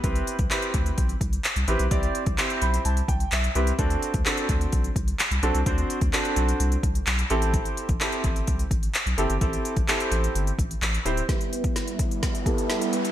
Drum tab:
HH |xxxxxxxxxxxxxxxx|xxxxxxxxxxxxxxxx|xxxxxxxxxxxxxxxx|xxxxxxxxxxxxxxxx|
CP |----x-------x---|----x-------x---|----x-------x---|----x-------x---|
SD |----------------|----------------|----------------|----------------|
BD |o--o--o-o-o-----|o--o------o-----|o--o--o-o-o-----|o--o------o-----|

HH |xxxxxxxxxxxxxxxx|xxxxxxxxxxxxxxxx|xxxxxxxxxxxxxxxx|
CP |----x-------x---|----x-------x---|----------------|
SD |----------------|----------------|o---o---o---o---|
BD |o--o--o-o-o-----|o--o------o-----|o--o--o-o-o-----|